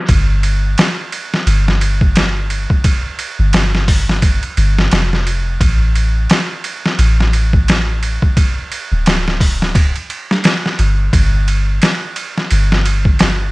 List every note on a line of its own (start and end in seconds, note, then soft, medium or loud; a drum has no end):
0.09 0.75 G1 loud
0.09 kick loud
0.09 ride medium
0.43 ride medium
0.78 snare loud
0.78 ride medium
1.12 ride medium
1.34 snare soft
1.47 2.66 G1 medium
1.47 ride medium
1.68 snare medium
1.81 ride medium
2.01 kick loud
2.16 snare loud
2.16 ride medium
2.50 ride medium
2.70 kick medium
2.84 kick loud
2.84 ride medium
3.19 ride medium
3.39 4.39 G1 medium
3.53 snare loud
3.53 ride medium
3.75 snare soft
3.88 kick medium
3.88 open hi-hat medium
4.09 snare medium
4.22 kick loud
4.22 ride medium
4.43 ride soft
4.57 4.88 G1 loud
4.57 ride medium
4.79 snare medium
4.92 5.58 F1 medium
4.92 snare loud
4.92 ride medium
5.13 snare soft
5.27 ride medium
5.61 6.27 A1 loud
5.61 kick loud
5.61 ride medium
5.95 ride medium
6.30 snare loud
6.30 ride medium
6.64 ride medium
6.86 snare medium
6.99 8.18 A1 medium
6.99 ride medium
7.20 snare soft
7.33 ride medium
7.53 kick loud
7.68 snare loud
7.68 ride medium
8.03 ride medium
8.22 kick loud
8.37 kick loud
8.37 ride medium
8.72 ride medium
8.92 9.91 D1 loud
9.06 snare loud
9.06 ride medium
9.28 snare soft
9.40 kick medium
9.40 open hi-hat medium
9.62 snare medium
9.75 kick loud
9.75 ride medium
9.96 ride soft
10.10 ride medium
10.31 snare medium
10.44 snare loud
10.44 ride medium
10.66 snare soft
10.79 11.10 G1 medium
10.79 ride medium
11.13 11.79 G1 loud
11.13 kick loud
11.13 ride medium
11.48 ride medium
11.82 snare loud
11.82 ride medium
12.16 ride medium
12.38 snare soft
12.51 13.52 G1 medium
12.51 ride medium
12.72 snare medium
12.85 ride medium
13.05 kick medium
13.19 snare loud
13.19 ride medium